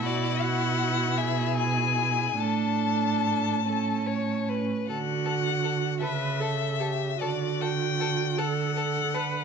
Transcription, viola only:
X:1
M:6/8
L:1/16
Q:3/8=51
K:D
V:1 name="Viola"
E12 | D6 C4- C z | F6 B2 A2 G2 | F6 A2 A2 B2 |]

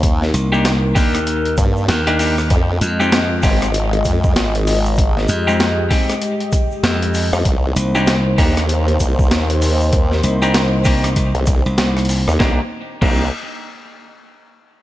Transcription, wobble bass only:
X:1
M:4/4
L:1/16
Q:"Swing 16ths" 1/4=97
K:Cm
V:1 name="Wobble bass" clef=bass
E,,2 z8 G,,2 z4 | F,,2 z4 A,,,4 F,,2 A,,,4- | A,,,2 z12 z F,, | C,,2 z4 E,,4 C,,2 E,,4- |
E,,2 z6 z C,,2 z4 E,, | C,, z3 C,,2 z8 z2 |]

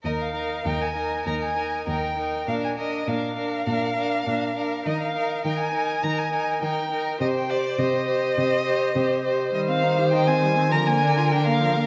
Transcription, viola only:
X:1
M:4/4
L:1/16
Q:1/4=101
K:Eb
V:1 name="Viola"
E2 E2 E2 E2 E2 E2 E2 E2 | D2 D2 D2 D2 D2 D2 D2 D2 | E2 E2 E2 E2 E2 E2 E2 E2 | G2 G2 G2 G2 G2 G2 G2 G2 |
G, C E G E C G, C F, B, D F D B, F, B, |]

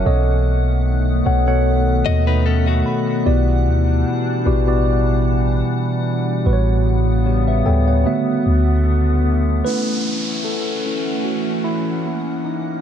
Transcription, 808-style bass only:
X:1
M:4/4
L:1/8
Q:"Swing 16ths" 1/4=75
K:F#phr
V:1 name="808-style bass" clef=bass
B,,,3 B,,,2 ^D,,2 z | B,,, D,, z A,,,3 z2 | A,,,3 D,, z D,,3 | z8 |]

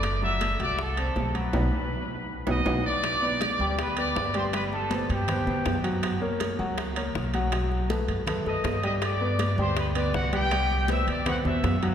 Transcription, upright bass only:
X:1
M:4/4
L:1/8
Q:1/4=160
K:G
V:1 name="Upright bass" clef=bass
F,,,3 C,,3 B,,,2 | B,,, z4 B,,, B,,, z | z3 D,,3 G,,,2- | G,,,3 G,,2 G,, F,,2- |
F,,3 ^C,,3 B,,,2- | B,,,3 F,,2 F,, G,,2- | G,,3 D,,3 C,,2- | C,,3 E,,2 E,, F,,2 |]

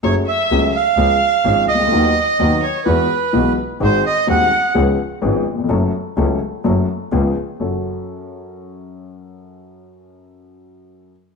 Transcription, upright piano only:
X:1
M:4/4
L:1/16
Q:1/4=127
K:F#m
V:1 name="Upright piano" clef=bass
[F,,F,A,CG]2 z2 [C,,C,F,A,CG]2 z2 [C,,C,^E,G,CG]2 z2 [G,,,G,,E,G,CG]2 z/2 ^B,,,/2 C,,/2 D,,/2 | [^D,,^D,F,B,F]2 z2 [D,,D,F,B,F]2 z2 [E,,E,G,B,F]2 z2 [B,,,B,,E,G,B,F]2 z2 | [G,,,G,,^D,G,^B,F]2 z2 [^D,,,^D,,D,G,B,F]2 z2 [C,,C,^E,=B,CG]2 z2 [G,,,G,,E,B,CG]2 z/2 D,,/2 =E,,/2 ^E,,/2 | [F,,F,A,CA]2 z2 [C,,C,F,A,CA]2 z2 [F,,F,A,CA]2 z2 [C,,C,^E,B,CG]2 z2 |
[F,,CFA]16- | [F,,CFA]16 |]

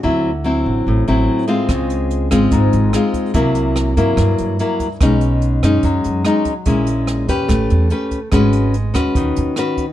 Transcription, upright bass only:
X:1
M:4/4
L:1/8
Q:1/4=145
K:C#dor
V:1 name="Upright bass" clef=bass
=D,,3 =A,,, A,,, A,,, z2 | C,,3 G,,, G,,, G,,, z2 | =C,,3 =G,, G,, G,, z2 | B,,,3 F,, F,, F,, z2 |
A,,,3 E,, =A,,, E,, z2 | G,,,3 D,, D,, D,, z2 |]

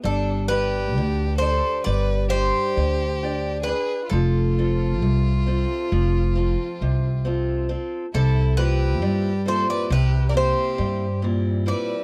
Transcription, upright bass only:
X:1
M:9/8
L:1/8
Q:3/8=45
K:none
V:1 name="Upright bass" clef=bass
G,,,2 D,,2 G,,,2 D,,3 | F,,,2 C,,2 F,,,2 C,,3 | C,,2 G,,2 C,,2 G,,3 |]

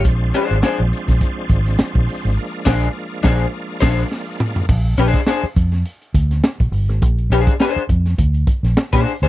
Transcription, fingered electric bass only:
X:1
M:4/4
L:1/16
Q:"Swing 16ths" 1/4=103
K:Bbmix
V:1 name="Fingered electric bass" clef=bass
B,,,2 z A,,, z B,,, z B,,, z2 A,,,2 z B,,, z A,,, | z2 B,,,2 z2 B,,,2 z2 B,,,2 z4 | B,,,2 B,,, z3 F,,2 z2 D,,2 z B,,, G,,, A,,, | B,,,2 B,,, z3 F,,2 D,,2 z B,,, z B,, z D,, |]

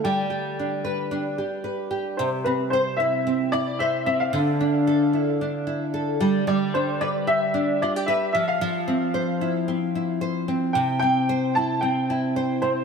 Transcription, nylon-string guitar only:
X:1
M:4/4
L:1/16
Q:"Swing 16ths" 1/4=112
K:C
V:1 name="Nylon-string guitar"
G,2 G2 D2 B2 D2 G2 B2 G2 | C,2 C2 c2 E2 C2 E2 c2 C2 | D,2 D2 A2 E2 D2 E2 A2 G,2 | G,2 D2 B2 G2 D2 F G B2 F,2 |
F,2 C2 c2 E2 C2 E2 c2 C2 | C,2 C2 c2 E2 C2 E2 c2 C2 |]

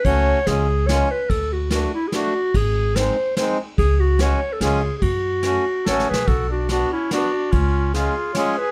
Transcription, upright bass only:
X:1
M:3/4
L:1/8
Q:"Swing" 1/4=144
K:C#phr
V:1 name="Upright bass" clef=bass
C,,2 C,,4 | D,,4 z2 | G,,,4 z2 | C,,4 C,,2 |
F,,4 A,,, B,,, | B,,,4 z2 | C,,4 z2 |]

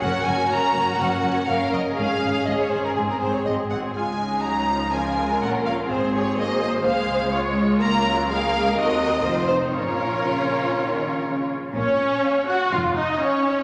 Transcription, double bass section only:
X:1
M:4/4
L:1/8
Q:1/4=124
K:Db
V:1 name="Double bass section" clef=bass
G,,, G,,, G,,, G,,, G,,, G,,, G,,, G,,, | A,,, A,,, A,,, A,,, A,,, A,,, A,,, A,,, | D,,6 B,,,2 | A,,,4 D,,4 |
[K:Bbm] D,,4 E,,2 F,,,2 | B,,,6- B,,, z | B,,,2 z2 F,,,2 z2 |]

